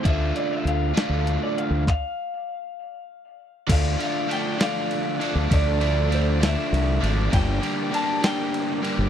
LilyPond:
<<
  \new Staff \with { instrumentName = "Clean electric guitar" } { \time 6/8 \key d \minor \tempo 4. = 66 e''8 d''16 e''16 f''4~ f''16 d''16 f''8 | f''2~ f''8 r8 | f''8 f''8 g''8 f''4. | d''4 c''8 e''4 r8 |
g''4 a''8 g''4. | }
  \new Staff \with { instrumentName = "Analog synth pad" } { \time 6/8 \key d \minor r2. | r2. | <d d' f' a' d''>2.~ | <d d' f' a' d''>2. |
<g' bes' d''>2. | }
  \new Staff \with { instrumentName = "Overdriven electric guitar" } { \clef bass \time 6/8 \key d \minor <d a d' f'>4. <d a d' f'>4. | r2. | <d f a d'>8 <d f a d'>8 <d f a d'>8 <d f a d'>4 <d f a d'>8 | <d f a d'>8 <d f a d'>8 <d f a d'>8 <d f a d'>4 <d f a d'>8 |
<g, d g bes d'>8 <g, d g bes d'>8 <g, d g bes d'>8 <g, d g bes d'>4 <g, d g bes d'>8 | }
  \new Staff \with { instrumentName = "Fingered electric bass" } { \clef bass \time 6/8 \key d \minor d,8 r8 d,8 r16 d,8 r8 d,16 | r2. | d,8 r2 r16 d,16 | d,2 c,8 gis,,8 |
g,,8 r2 r16 g,,16 | }
  \new DrumStaff \with { instrumentName = "Drums" } \drummode { \time 6/8 <hh bd>8 hh8 hh8 <hh sn>8 hh8 hh8 | <hc bd>4. r4. | <cymc bd cymr>8 cymr8 cymr8 <cymr sn>8 cymr8 cymr8 | <bd cymr>8 cymr8 cymr8 <cymr sn>8 cymr8 cymr8 |
<bd cymr>8 cymr8 cymr8 <cymr sn>8 cymr8 cymr8 | }
>>